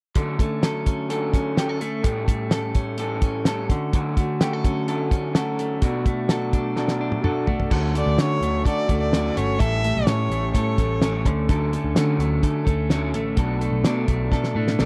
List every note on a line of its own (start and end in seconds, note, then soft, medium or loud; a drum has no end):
0.15 0.39 D3 medium
0.15 0.39 F#3 medium
0.15 0.40 A3 medium
0.15 0.39 C#4 medium
0.15 0.37 A4 medium
0.15 kick medium
0.15 closed hi-hat medium
0.39 0.61 A3 soft
0.39 0.62 C#4 soft
0.39 0.63 A4 soft
0.39 kick medium
0.39 closed hi-hat medium
0.61 1.09 F#3 medium
0.61 1.09 A3 soft
0.61 1.10 C#4 soft
0.61 1.11 A4 medium
0.61 snare medium
0.61 closed hi-hat medium
0.86 1.34 C#4 soft
0.86 kick medium
0.86 closed hi-hat medium
1.09 1.57 D3 medium
1.09 1.54 F#3 medium
1.09 1.56 A3 medium
1.09 1.57 C#4 medium
1.09 1.58 A4 medium
1.09 closed hi-hat medium
1.34 2.75 C#4 medium
1.34 kick medium
1.34 snare soft
1.34 closed hi-hat medium
1.55 1.80 F#3 medium
1.55 1.80 A3 medium
1.55 1.80 C#4 medium
1.55 1.69 G4 soft
1.55 1.78 A4 medium
1.55 snare medium
1.55 closed hi-hat medium
1.69 2.09 A4 soft
1.80 2.02 A3 soft
1.80 2.03 C#4 soft
1.80 2.03 A4 soft
1.80 closed hi-hat medium
2.02 2.27 A2 medium
2.02 2.27 E3 medium
2.02 2.27 G3 medium
2.02 2.27 A3 medium
2.02 2.26 C#4 medium
2.02 2.24 A4 medium
2.02 kick medium
2.02 closed hi-hat medium
2.26 2.48 G3 soft
2.26 2.49 A3 soft
2.26 2.50 C#4 soft
2.26 2.51 A4 soft
2.26 kick medium
2.26 closed hi-hat medium
2.49 2.97 G3 soft
2.49 2.99 A3 soft
2.49 2.99 C#4 medium
2.49 2.99 A4 medium
2.49 snare loud
2.49 closed hi-hat medium
2.75 3.23 C#4 medium
2.75 kick medium
2.75 closed hi-hat medium
2.98 3.45 A2 medium
2.98 3.46 E3 medium
2.98 3.44 G3 medium
2.98 3.45 A3 medium
2.98 3.47 C#4 medium
2.98 3.47 A4 medium
2.98 closed hi-hat medium
3.22 3.98 C#4 medium
3.22 kick medium
3.22 closed hi-hat medium
3.45 3.69 G3 medium
3.45 3.70 A3 medium
3.45 3.70 C#4 medium
3.45 3.68 A4 medium
3.45 snare medium
3.45 closed hi-hat medium
3.69 3.94 D3 medium
3.69 3.93 A3 soft
3.69 3.93 C#4 soft
3.69 3.93 F#4 soft
3.69 kick medium
3.69 closed hi-hat medium
3.93 4.17 D3 medium
3.93 4.17 F#3 medium
3.93 4.17 A3 medium
3.93 4.17 C#4 medium
3.93 4.16 F#4 medium
3.93 kick loud
3.93 closed hi-hat medium
4.17 4.40 A3 soft
4.17 4.41 C#4 soft
4.17 4.41 F#4 medium
4.17 kick medium
4.17 closed hi-hat medium
4.40 4.87 F#3 medium
4.40 4.88 A3 medium
4.40 4.88 C#4 medium
4.40 4.89 F#4 medium
4.40 4.53 G4 medium
4.40 snare loud
4.40 closed hi-hat medium
4.53 4.87 A4 soft
4.64 5.11 C#4 medium
4.64 kick medium
4.64 closed hi-hat medium
4.87 5.38 D3 medium
4.87 5.33 F#3 medium
4.87 5.34 A3 medium
4.87 5.34 C#4 medium
4.87 5.36 F#4 medium
4.87 5.35 A4 medium
4.87 closed hi-hat medium
5.11 5.87 C#4 medium
5.11 kick medium
5.11 closed hi-hat medium
5.33 5.82 F#3 medium
5.33 5.82 A3 medium
5.33 5.82 C#4 medium
5.33 5.83 F#4 medium
5.33 6.29 A4 medium
5.33 snare medium
5.33 closed hi-hat medium
5.59 6.07 A3 medium
5.59 closed hi-hat medium
5.81 6.05 B2 medium
5.81 6.06 F#3 medium
5.81 6.06 A3 medium
5.81 6.05 D4 medium
5.81 6.03 F#4 medium
5.81 kick medium
5.81 closed hi-hat medium
6.04 6.28 A3 soft
6.04 6.29 D4 soft
6.04 6.29 F#4 soft
6.04 kick medium
6.04 closed hi-hat medium
6.28 6.75 F#3 medium
6.28 6.76 A3 medium
6.28 6.77 D4 medium
6.28 6.77 F#4 medium
6.28 6.77 A4 medium
6.28 snare medium
6.28 closed hi-hat medium
6.53 7.00 D4 medium
6.53 kick medium
6.53 closed hi-hat medium
6.76 7.23 B2 medium
6.76 7.21 F#3 medium
6.76 7.22 A3 medium
6.76 7.23 D4 medium
6.76 7.25 F#4 medium
6.76 7.24 A4 soft
6.76 snare soft
6.88 snare soft
7.01 7.76 D4 medium
7.12 high tom medium
7.21 7.46 F#3 medium
7.21 7.47 A3 medium
7.21 7.47 D4 medium
7.21 7.45 F#4 medium
7.21 7.71 A4 medium
7.21 mid tom medium
7.46 7.70 A3 soft
7.46 7.71 D4 soft
7.46 7.70 F#4 soft
7.46 floor tom medium
7.60 floor tom medium
7.70 8.01 D2 medium
7.70 7.94 D3 medium
7.70 7.95 F#3 medium
7.70 7.95 A3 medium
7.70 7.95 C#4 medium
7.70 7.93 F#4 medium
7.70 8.66 A4 medium
7.70 kick medium
7.70 crash medium
7.95 8.18 A3 soft
7.95 8.18 C#4 soft
7.95 8.18 F#4 soft
7.95 8.21 D5 medium
7.95 closed hi-hat medium
8.06 8.17 D2 medium
8.18 8.38 D3 medium
8.18 8.65 D3 medium
8.18 8.63 F#3 medium
8.18 8.65 A3 medium
8.18 8.66 C#4 medium
8.18 8.66 F#4 medium
8.18 8.66 C#5 medium
8.18 snare loud
8.18 closed hi-hat medium
8.41 8.62 D2 medium
8.41 8.90 A3 medium
8.41 closed hi-hat medium
8.64 8.85 D3 medium
8.64 8.89 F#3 soft
8.64 8.89 A3 soft
8.64 8.89 C#4 soft
8.64 8.87 F#4 medium
8.64 9.60 A4 soft
8.64 8.99 D5 medium
8.64 kick medium
8.64 closed hi-hat medium
8.88 9.29 D2 medium
8.88 9.12 A3 soft
8.88 9.12 C#4 soft
8.88 9.12 F#4 soft
8.88 kick medium
8.88 closed hi-hat medium
9.01 9.39 D5 medium
9.12 9.36 D3 medium
9.12 9.36 F#3 medium
9.12 9.36 A3 medium
9.12 9.35 C#4 medium
9.12 9.34 F#4 medium
9.12 snare medium
9.12 closed hi-hat medium
9.35 9.57 G1 medium
9.35 9.58 A3 soft
9.35 9.58 C#4 soft
9.35 9.59 F#4 soft
9.35 9.61 C#5 medium
9.35 closed hi-hat medium
9.58 9.90 A1 medium
9.58 9.83 A2 medium
9.58 9.83 E3 medium
9.58 9.83 G3 medium
9.58 9.84 A3 medium
9.58 9.82 C#4 medium
9.58 9.82 A4 medium
9.58 10.09 E5 loud
9.58 kick loud
9.58 closed hi-hat medium
9.83 10.05 G3 soft
9.83 10.06 A3 soft
9.83 10.06 C#4 soft
9.83 10.07 A4 soft
9.83 closed hi-hat medium
9.96 10.06 B1 medium
10.06 10.54 A2 medium
10.06 10.27 A2 medium
10.06 10.54 E3 medium
10.06 10.52 G3 medium
10.06 10.54 A3 medium
10.06 10.55 C#4 medium
10.06 10.56 A4 medium
10.06 10.53 C#5 medium
10.06 snare loud
10.06 closed hi-hat medium
10.30 10.50 A1 medium
10.30 10.79 A3 soft
10.30 closed hi-hat medium
10.53 10.75 A2 medium
10.53 10.78 G3 soft
10.53 10.78 A3 medium
10.53 10.77 C#4 soft
10.53 10.77 A4 medium
10.53 11.21 C#5 medium
10.53 kick medium
10.53 closed hi-hat medium
10.78 10.98 A1 medium
10.78 11.00 G3 soft
10.78 11.01 A3 soft
10.78 11.01 C#4 soft
10.78 11.02 A4 soft
10.78 kick medium
10.78 snare soft
10.78 closed hi-hat medium
11.01 11.25 A1 medium
11.01 11.25 A2 medium
11.01 11.25 E3 medium
11.01 11.25 G3 medium
11.01 11.26 A3 medium
11.01 11.25 C#4 medium
11.01 11.23 A4 medium
11.01 snare loud
11.01 closed hi-hat medium
11.25 11.76 D2 medium
11.25 11.49 D3 medium
11.25 11.48 A3 soft
11.25 11.49 C#4 soft
11.25 11.49 A4 medium
11.25 kick medium
11.25 closed hi-hat medium
11.48 11.72 D3 medium
11.48 11.73 F#3 medium
11.48 11.73 A3 medium
11.48 11.72 C#4 medium
11.48 11.71 A4 medium
11.48 kick medium
11.48 closed hi-hat medium
11.72 11.96 A3 soft
11.72 11.97 C#4 soft
11.72 11.96 A4 medium
11.72 closed hi-hat medium
11.84 11.94 D2 medium
11.95 12.16 D3 loud
11.95 12.47 D3 medium
11.95 12.42 F#3 medium
11.95 12.43 A3 medium
11.95 12.43 C#4 medium
11.95 12.44 A4 medium
11.95 snare medium
11.95 closed hi-hat medium
12.19 12.39 D2 medium
12.19 12.67 A3 medium
12.19 closed hi-hat medium
12.42 12.63 D3 medium
12.42 12.66 F#3 soft
12.42 12.67 A3 medium
12.42 12.65 C#4 medium
12.42 12.63 A4 medium
12.42 kick medium
12.42 closed hi-hat medium
12.65 13.13 D2 medium
12.65 12.90 A3 soft
12.65 12.90 C#4 medium
12.65 12.89 A4 medium
12.65 kick medium
12.65 closed hi-hat medium
12.90 13.14 D3 medium
12.90 13.14 F#3 medium
12.90 13.14 A3 medium
12.90 13.13 C#4 medium
12.90 13.11 A4 loud
12.90 snare medium
12.90 closed hi-hat medium
13.12 13.34 A1 medium
13.12 13.36 A3 soft
13.12 13.37 C#4 soft
13.12 13.37 A4 medium
13.12 closed hi-hat medium
13.36 13.68 B1 medium
13.36 13.61 B2 medium
13.36 13.61 F#3 medium
13.36 13.61 A3 medium
13.36 13.60 D4 medium
13.36 13.58 A4 medium
13.36 kick medium
13.36 closed hi-hat medium
13.59 13.84 A3 medium
13.59 13.85 D4 soft
13.59 13.84 A4 medium
13.59 closed hi-hat medium
13.72 13.82 B1 medium
13.84 14.04 B2 medium
13.84 14.31 B2 medium
13.84 14.30 F#3 medium
13.84 14.31 A3 medium
13.84 14.32 D4 medium
13.84 14.33 A4 medium
13.84 snare medium
13.84 closed hi-hat medium
14.08 14.28 B1 medium
14.08 14.56 A3 medium
14.08 kick medium
14.08 closed hi-hat medium
14.30 14.52 B2 medium
14.30 14.55 F#3 soft
14.30 14.55 A3 medium
14.30 14.55 D4 medium
14.30 14.53 A4 medium
14.30 kick medium
14.30 snare soft
14.44 snare soft
14.55 14.75 A2 medium
14.55 14.78 A3 soft
14.55 14.79 D4 medium
14.55 14.79 A4 medium
14.68 snare medium
14.79 14.85 B1 medium
14.79 14.85 B2 medium
14.79 14.85 F#3 medium
14.79 14.85 A3 medium
14.79 14.85 D4 medium
14.79 14.85 A4 medium
14.79 snare medium